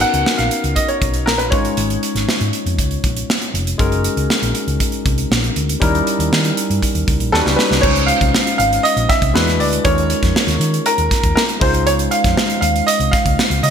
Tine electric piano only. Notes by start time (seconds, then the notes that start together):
Already playing: B3 C#4 D#4 F#4 A#4
1.51 G#3 C#4 D#4 F4 C#5
3.78 G#3 C#4 D#4 F#4 A#4
5.80 G3 C#4 D#4 E4 A#4
7.33 G3 C#4 D#4 F#4 B4
7.83 G#3 C#4 D#4 F4 C5
9.33 G#3 D4 E4 F#4 B4
9.83 G#3 C#4 D#4 F4 A#4
11.60 G#3 C#4 D#4 F4 C5